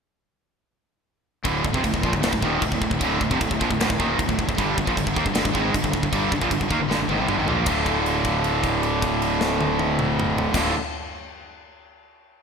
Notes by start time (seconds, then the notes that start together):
1.44 D1 D2 A2 D3, kick, crash
1.64 D1 D2 A2, kick
1.73 F1 F2 C3, kick
1.83 D1 D2 A2, kick, crash
1.93 D1 D2 A2, kick
2.02 A#1 A#2 F3, kick
2.12 D1 D2 A2, kick
2.22 D1 D2 A2, snare, crash
2.32 D1 D2 A2, kick
2.42 D#1 D#2 A#2 D#3, kick
2.62 D1 D2 A2, kick, crash
2.71 D1 D2 A2, kick
2.81 D1 D2 A2, kick
2.90 D1 D2 A2, kick
2.99 D1 D2 A2 D3, kick, crash
3.03 A2 D3
3.21 D1 D2 A2, kick
3.30 F1 F2 C3, kick
3.40 D1 D2 A2, kick, crash
3.50 D1 D2 A2, kick
3.60 A#1 A#2 F3, kick
3.69 D1 D2 A2, kick
3.80 D1 D2 A2, snare, crash
3.90 D1 D2 A2, kick
3.99 D#1 D#2 A#2 D#3, kick
4.19 D1 D2 A2, kick, crash
4.28 D1 D2 A2, kick
4.38 D1 D2 A2, kick
4.47 D1 D2 A2, kick
4.56 G1 G2 D3 G3, kick, crash
4.76 G1 G2 D3, kick
4.85 A#1 A#2 F3, kick
4.96 G1 G2 D3, kick, crash
5.04 G1 G2 D3, kick
5.14 D#2 D#3 A#3, kick
5.24 G1 G2 D3, kick
5.34 G1 G2 D3, snare, crash
5.45 G1 G2 D3, kick
5.52 G#1 G#2 D#3 G#3, kick
5.72 G1 G2 D3, kick, crash
5.82 G1 G2 D3, kick
5.92 G1 G2 D3, kick
6.02 G1 G2 D3, kick
6.12 G1 G2 D3 G3, kick, crash
6.32 G1 G2 D3, kick
6.41 A#1 A#2 F3, kick
6.51 G1 G2 D3, kick, crash
6.59 G1 G2 D3, kick
6.63 D3
6.68 D#2 D#3 A#3, kick
6.79 G1 G2 D3
6.88 G1 G2 D3, snare
6.98 G1 G2 D3
7.08 G#1 G#2 D#3, high tom
7.19 C2 C3 G3
7.27 G1 G2 D3, mid tom
7.37 G#1 G#2 D#3
7.46 A#1 A#2 F3 A#3, floor tom
7.64 D1 D2 A2 D3 A3, kick, crash
7.69 F4
7.86 kick, crash
8.06 crash
8.24 kick, crash
8.44 crash
8.64 kick, crash
8.83 crash
9.02 kick, crash
9.22 crash
9.41 snare
9.61 high tom
9.79 high tom
9.99 mid tom
10.19 mid tom
10.38 floor tom
10.53 D1 D2 A2 D3 A3 F4, kick, snare, crash